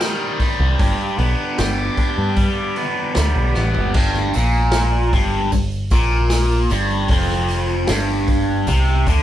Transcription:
Already playing: G3 D#4 G4 C5 D#5 G5 D#6
0.01 D#3, snare, open hi-hat, tambourine
0.40 G3, kick, open hi-hat
0.59 C2
0.79 G1 G2 B4 D5 D6, kick, open hi-hat
1.18 B1 B3, open hi-hat
1.58 G1 G4, snare, open hi-hat, tambourine
1.97 D4, kick, open hi-hat
2.18 G2
2.36 G3, kick, open hi-hat
2.76 B3, open hi-hat
3.15 D2 G3, snare, open hi-hat, tambourine
3.35 B1
3.54 A1 B3, snare
3.74 G1, floor tom
3.94 G1 G2, kick, crash
4.14 snare, tambourine
4.33 A#1 A#2, open hi-hat, tambourine
4.54 tambourine
4.72 snare, open hi-hat, tambourine
5.13 G1 G2, kick, open hi-hat, tambourine
5.52 G1 G2, kick, open hi-hat, tambourine
5.72 tambourine
5.90 A#1 A#2, kick, open hi-hat, tambourine
6.11 tambourine
6.30 snare, open hi-hat, tambourine
6.52 tambourine
6.70 G1 G2, open hi-hat, tambourine
6.90 tambourine
7.08 F1 F2, kick, open hi-hat
7.29 snare, tambourine
7.48 open hi-hat, tambourine
7.69 tambourine
7.87 G1 G2, snare, open hi-hat, tambourine
8.27 kick, open hi-hat, tambourine
8.67 C2 C3, kick, open hi-hat, tambourine
8.88 tambourine
9.06 D2 D3, kick, open hi-hat, tambourine

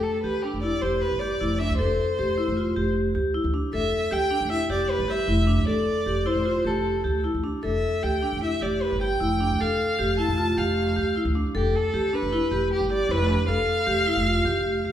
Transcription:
Already playing: A4
0.03 A4
0.23 D2 G4 B4
0.42 D4 G4
0.54 F1
0.62 E4 D5
0.82 F1 G4 C5
1.01 B4
1.12 G1
1.19 G4 D5
1.41 F1 E4
1.59 D4 E5
1.70 D2
1.78 F1 A4 C5
2.19 F1 G4
2.38 E4
2.48 F1
2.57 F4
2.76 F1 G4
3.15 D2 G4
3.35 E4
3.44 D2
3.54 D4
3.73 F1 A4 E5
4.11 D2 G4 G5
4.31 D4
4.41 F1
4.50 E4 E5
4.70 F1 G4 D5
4.91 B4
4.99 G1
5.08 G4 E5
5.28 F1 E4
5.47 D4
5.57 D2
5.67 F1 A4 D5
6.06 F1 G4
6.26 E4 C5
6.35 F1
6.45 F4
6.65 F1 G4 A4
7.04 D2 G4
7.24 E4
7.34 D2
7.44 D4
7.63 F1 A4 E5
8.03 D2 G4 G5
8.23 D4
8.33 F1
8.41 E4 E5
8.61 F1 G4 D5
8.82 B4
8.91 G1
9.01 G4 G5
9.20 F1 E4
9.40 D4
9.51 D2
9.60 F1 A4 F5
9.99 F1 G4
10.18 E4 A5
10.28 F1
10.38 F4
10.57 F1 G4 F5
10.96 D2 G4
11.16 E4
11.25 D2
11.35 D4
11.55 F1 G4 A4
11.76 A4
11.94 D2 G4
12.13 D4 B4
12.23 F1
12.33 E4
12.51 F1 G4
12.73 G4
12.81 G1
12.90 G4 D5
13.09 F1 E4 B4
13.29 D4
13.48 F1 A4 F5
13.87 F1 G4
14.06 E4
14.16 F1
14.26 F4
14.45 F1 G4
14.85 G4

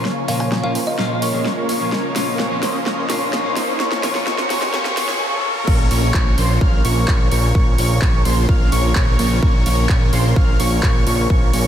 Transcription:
Already playing: C#3 A#3 F4 C#5, riser
0.05 F3 A#3 C#4 A#4 C#5 C#6, snare
0.28 A#2 F3 A#3 C#4 F4 A#4 C#5 F5 C#6, open hi-hat
0.40 G#5
0.52 F3 A#3 C#4 A#4 C#5 G#5 C#6, snare
0.63 A#2 F3 A#3 C#4 F4 F5
0.75 F3 A#3 C#4 A#4 C5 C6, open hi-hat
0.87 D#5
0.98 A#2 F3 A#3 C#4 F4 A#4 F5 F6, snare
1.22 F3 A#3 C#4 A#4 C#5 C#6, open hi-hat
1.33 A#2 F3 A#3 C#4 G#4
1.45 F3 A#3 C#4 A#4 C#5 C#6, snare
1.69 F3 A#3 C#4 A#4 C#5 C#6, open hi-hat
1.80 A#2 F3 A#3 C#4 F4
1.92 F3 A#3 C#4 A#4 C#5 D#5 C#6, snare
2.15 A#2 F3 A#3 C#4 F4 A#4 C#5 C#6, snare, open hi-hat
2.39 F3 A#3 C#4 A#4 C#5 C#6, snare
2.50 A#2 F3 A#3 C#4 F4
2.63 F3 A#3 C#4 A#4 C5 C6, snare, open hi-hat
2.86 F3 A#3 C#4 A#4 C#5 C#6, snare
3.09 A#2 F3 A#3 C#4 F4 A#4 C#5 C#6, snare, open hi-hat
3.33 F3 A#3 C#4 A#4 C#5 C#6, snare
3.44 A#2 F3 A#3 C#4 F4
3.56 F3 A#3 C#4 A#4 C5 C6, snare, open hi-hat
3.80 F3 A#3 C#4 A#4 C#5 C#6, snare
3.92 snare
4.03 A#2 F3 A#3 C#4 F4 A#4 C#5 C#6, snare, open hi-hat
4.15 snare
4.27 F3 A#3 C#4 A#4 C#5 C#6, snare
4.38 snare
4.50 A#2 F3 A#3 C#4 F4 A#4 C#5 C#6, snare, open hi-hat
4.62 snare
4.73 A#2 F3 A#3 C#4 F4 A#4 C#5 C#6, snare
4.85 snare
4.96 A#2 F3 A#3 C#4 F4 A#4 C#5 C#6, snare, open hi-hat
5.09 snare
5.67 A#1 C#3 F3 A#3 C#4 F4 A#4 C#5 C#6, kick, crash
5.91 A#1 F3 A#3 C#4 A#4 C#5 C#6, open hi-hat
6.14 A#1 C#6, kick, clap
6.38 A#1 F3 A#3 C#4 A#4 C5 C6, open hi-hat
6.61 F3 A#3 C#4 A#4 F5 F6, kick
6.85 A#1 F3 A#3 C#4 A#4 C#5 C#6, open hi-hat
7.08 A#1 F3 A#3 C#4 A#4 C#5 C#6, kick, clap
7.32 A#1 F3 A#3 C#4 A#4 C#5 C#6, open hi-hat
7.55 A#1 F3 A#3 C#4 A#4 C#5 C#6, kick
7.78 A#1 F3 A#3 C#4 A#4 C#5 C#6, open hi-hat
8.02 A#1 F3 A#3 C#4 C#5 C#6, kick, clap
8.25 A#1 F3 A#3 C#4 A#4 C5 C6, open hi-hat
8.49 F3 A#3 F5 F6, kick
8.72 A#1 F3 A#3 C#4 A#4 C#5 C#6, open hi-hat
8.95 F3 A#3 C#4 C#5 C#6, kick, clap
9.19 A#1 F3 A#3 C#4 A#4 C#5 C#6, open hi-hat
9.43 F3 A#3 C#4 A#4 C#5 C#6, kick
9.66 A#1 F3 A#3 C#4 A#4 C#5 C#6, open hi-hat
9.89 C#4 A#4 C#5 C#6, kick, clap
10.13 A#1 F3 A#3 C#4 A#4 C5 C6, open hi-hat
10.36 A#1 F3 A#3 C#4 A#4 F5 F6, kick
10.60 A#1 F3 A#3 C#4 A#4 C#5 C#6, open hi-hat
10.83 A#1 C#6, kick, clap
11.07 A#1 F3 A#3 C#4 A#4 C#5 C#6, open hi-hat
11.30 A#1 F3 A#3 A#4 C#6, kick
11.53 A#1 F3 A#3 C#4 A#4 C#5 C#6, open hi-hat

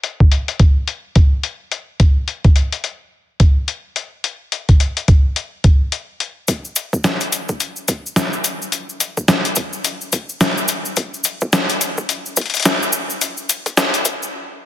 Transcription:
0.04 closed hi-hat
0.20 kick
0.32 closed hi-hat
0.48 closed hi-hat
0.59 kick, closed hi-hat
0.88 closed hi-hat
1.15 kick, closed hi-hat
1.43 closed hi-hat
1.72 closed hi-hat
2.00 kick, closed hi-hat
2.28 closed hi-hat
2.44 kick, closed hi-hat
2.56 closed hi-hat
2.72 closed hi-hat
2.84 closed hi-hat
3.40 kick, closed hi-hat
3.68 closed hi-hat
3.96 closed hi-hat
4.24 closed hi-hat
4.52 closed hi-hat
4.69 kick, closed hi-hat
4.80 closed hi-hat
4.97 closed hi-hat
5.08 kick, closed hi-hat
5.36 closed hi-hat
5.64 kick, closed hi-hat
5.92 closed hi-hat
6.20 closed hi-hat
6.48 kick, closed hi-hat, cabasa
6.65 cabasa
6.76 closed hi-hat, cabasa
6.93 kick, cabasa
7.04 snare, closed hi-hat, cabasa
7.20 closed hi-hat, cabasa
7.32 closed hi-hat, cabasa
7.49 kick, cabasa
7.60 closed hi-hat, cabasa
7.76 cabasa
7.88 kick, closed hi-hat, cabasa
8.06 cabasa
8.16 snare, closed hi-hat, cabasa
8.33 cabasa
8.44 closed hi-hat, cabasa
8.62 cabasa
8.72 closed hi-hat, cabasa
8.89 cabasa
9.00 closed hi-hat, cabasa
9.17 kick, cabasa
9.28 snare, closed hi-hat, cabasa
9.45 closed hi-hat, cabasa
9.56 kick, closed hi-hat, cabasa
9.73 cabasa
9.84 closed hi-hat, cabasa
10.01 cabasa
10.12 kick, closed hi-hat, cabasa
10.29 cabasa
10.41 snare, closed hi-hat, cabasa
10.58 cabasa
10.68 closed hi-hat, cabasa
10.85 cabasa
10.96 kick, closed hi-hat, cabasa
11.14 cabasa
11.24 closed hi-hat, cabasa
11.41 kick, cabasa
11.53 snare, closed hi-hat, cabasa
11.69 closed hi-hat, cabasa
11.81 closed hi-hat, cabasa
11.98 kick, cabasa
12.09 closed hi-hat, cabasa
12.26 cabasa
12.37 kick, closed hi-hat, cabasa
12.41 closed hi-hat
12.46 closed hi-hat
12.50 closed hi-hat
12.54 closed hi-hat, cabasa
12.57 closed hi-hat
12.60 closed hi-hat
12.62 snare, closed hi-hat, cabasa
12.65 closed hi-hat
12.83 cabasa
12.93 cabasa
13.10 cabasa
13.21 closed hi-hat, cabasa
13.37 cabasa
13.49 closed hi-hat, cabasa
13.66 kick, closed hi-hat, cabasa
13.77 snare, closed hi-hat, cabasa
13.94 closed hi-hat, cabasa
14.05 kick, closed hi-hat, cabasa
14.23 cabasa

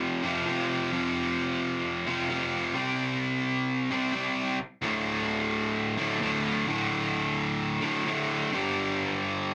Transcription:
Already playing: F2 C3 F3
0.23 F2 C3 F3
0.46 F2 C3 F3
0.91 F2 C3 F3
2.07 F2 C3 F3
2.29 F2 C3 F3
2.74 C3 G3 C4
3.90 C3 G3 C4
4.13 C3 G3 C4
4.82 D2 A2 D3
5.97 D2 A2 D3
6.20 D2 A2 D3
6.66 D2 A2 D3
7.82 D2 A2 D3
8.05 D2 A2 D3
8.51 G2 D3 G3

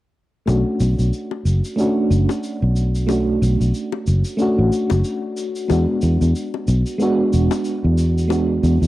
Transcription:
0.46 B1 A3 C#4 D4, high bongo, cabasa
0.50 F#4
0.80 B1, cabasa
0.99 B1, cabasa
1.13 cabasa
1.31 high bongo
1.45 F#1, cabasa
1.65 cabasa
1.76 A3 C#4 D4, cabasa
1.80 F#4
2.10 F#1, cabasa
2.29 high bongo, cabasa
2.44 cabasa
2.62 B1
2.76 cabasa
2.95 cabasa
3.07 A3 C#4 D4, high bongo, cabasa
3.11 F#4
3.42 B1, cabasa
3.60 B1, cabasa
3.74 cabasa
3.92 high bongo
4.07 F#1, cabasa
4.25 cabasa
4.37 A3 C#4 D4, cabasa
4.42 F#4
4.58 A1
4.73 cabasa
4.90 F#1, high bongo, cabasa
5.04 cabasa
5.37 cabasa
5.56 cabasa
5.68 E2 G#3 B3 D4, high bongo, cabasa
5.72 F#4
6.02 E2, cabasa
6.21 E2, cabasa
6.35 cabasa
6.54 high bongo
6.68 B1, cabasa
6.86 cabasa
6.98 G#3 B3 D4, cabasa
7.03 F#4
7.33 E1, cabasa
7.51 high bongo, cabasa
7.65 cabasa
7.84 E2
7.98 cabasa
8.18 cabasa
8.28 G#3 B3 D4, high bongo
8.32 F#4, cabasa
8.63 E2, cabasa
8.82 E2, cabasa

